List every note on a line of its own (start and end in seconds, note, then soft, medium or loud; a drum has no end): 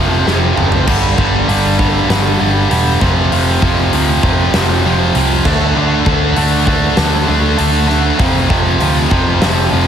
0.00 0.21 F1 medium
0.00 0.25 F2 medium
0.00 0.26 C3 loud
0.00 0.26 F3 medium
0.26 0.51 F1 medium
0.26 0.56 F2 loud
0.26 0.56 C3 loud
0.26 0.56 F3 loud
0.26 snare medium
0.57 0.88 F#1 medium
0.57 0.85 F2 medium
0.57 0.86 C3 medium
0.57 0.86 F3 medium
0.57 mid tom medium
0.72 floor tom loud
0.87 1.13 G1 medium
0.87 1.16 G2 medium
0.87 1.16 D3 loud
0.87 1.17 G3 medium
0.87 kick loud
0.87 crash loud
1.17 1.43 G1 medium
1.17 1.47 G2 medium
1.17 1.47 D3 medium
1.17 1.48 G3 medium
1.17 kick loud
1.48 1.99 G1 medium
1.48 1.77 G2 medium
1.48 1.77 D3 medium
1.48 1.78 G3 loud
1.48 open hi-hat medium
1.79 2.08 G2 medium
1.79 2.08 D3 medium
1.79 2.08 G3 medium
1.79 kick loud
2.09 2.35 G1 loud
2.09 2.38 G2 medium
2.09 2.38 D3 loud
2.09 2.39 G3 loud
2.09 snare loud
2.09 open hi-hat medium
2.39 2.66 G1 medium
2.39 2.68 G2 medium
2.39 2.68 D3 medium
2.39 2.69 G3 loud
2.69 2.96 E1 medium
2.69 2.98 G2 loud
2.69 2.99 D3 loud
2.69 2.99 G3 loud
2.69 open hi-hat medium
3.00 3.26 F1 medium
3.00 3.30 F2 medium
3.00 3.31 C3 loud
3.00 3.32 F3 loud
3.00 kick loud
3.00 snare soft
3.32 3.57 F1 medium
3.32 3.62 F2 loud
3.32 3.62 C3 medium
3.32 3.63 F3 loud
3.32 open hi-hat medium
3.62 3.88 F1 medium
3.62 3.92 F2 medium
3.62 3.92 C3 medium
3.62 3.93 F3 medium
3.62 kick loud
3.93 4.18 D2 medium
3.93 4.22 F2 medium
3.93 4.23 C3 loud
3.93 4.23 F3 loud
3.93 open hi-hat medium
4.23 4.49 F1 medium
4.23 4.53 F2 medium
4.23 4.54 C3 loud
4.23 4.54 F3 loud
4.23 kick loud
4.54 4.79 F1 loud
4.54 4.84 F2 loud
4.54 4.84 C3 loud
4.54 4.85 F3 loud
4.54 snare loud
4.54 open hi-hat medium
4.84 5.09 F1 medium
4.84 5.14 F2 medium
4.84 5.15 C3 loud
4.84 5.15 F3 loud
5.15 5.40 C2 medium
5.15 5.44 F2 loud
5.15 5.44 C3 loud
5.15 5.44 F3 loud
5.15 open hi-hat medium
5.45 5.71 D2 loud
5.45 5.75 D3 loud
5.45 5.77 A3 loud
5.45 5.76 D4 loud
5.45 kick loud
5.45 snare soft
5.45 crash medium
5.76 6.01 D2 medium
5.76 6.06 D3 medium
5.76 6.07 A3 medium
5.76 6.06 D4 medium
6.06 6.32 D2 medium
6.06 6.35 D3 medium
6.06 6.36 A3 medium
6.06 6.36 D4 loud
6.06 kick medium
6.36 6.87 D2 loud
6.36 6.66 D3 loud
6.36 6.68 A3 loud
6.36 6.67 D4 loud
6.36 open hi-hat medium
6.67 6.96 D3 medium
6.67 6.96 A3 medium
6.67 6.97 D4 loud
6.67 kick loud
6.97 7.23 D2 loud
6.97 7.27 D3 medium
6.97 7.27 A3 loud
6.97 7.27 D4 loud
6.97 snare loud
6.97 open hi-hat medium
7.28 7.54 D2 medium
7.28 7.56 D3 medium
7.28 7.57 A3 medium
7.28 7.57 D4 loud
7.57 8.10 D2 medium
7.57 7.86 D3 loud
7.57 7.87 A3 loud
7.57 7.87 D4 loud
7.57 open hi-hat medium
7.88 8.17 D3 loud
7.88 8.18 A3 medium
7.88 8.18 D4 loud
7.88 snare soft
8.19 8.45 F1 loud
8.19 8.48 F2 medium
8.19 8.48 C3 loud
8.19 8.48 F3 loud
8.19 kick loud
8.19 open hi-hat medium
8.49 8.76 F1 loud
8.49 8.79 F2 medium
8.49 8.80 C3 loud
8.49 8.81 F3 loud
8.49 kick loud
8.80 9.06 D2 loud
8.80 9.09 F2 loud
8.80 9.10 C3 loud
8.80 9.11 F3 loud
8.80 open hi-hat medium
9.11 9.37 F1 medium
9.11 9.39 F2 medium
9.11 9.40 C3 medium
9.11 9.40 F3 medium
9.11 kick loud
9.41 9.68 F1 loud
9.41 9.70 F2 loud
9.41 9.70 C3 loud
9.41 9.70 F3 loud
9.41 snare loud
9.41 open hi-hat medium
9.71 9.87 F1 medium
9.71 9.87 F2 medium
9.71 9.87 C3 loud
9.71 9.87 F3 loud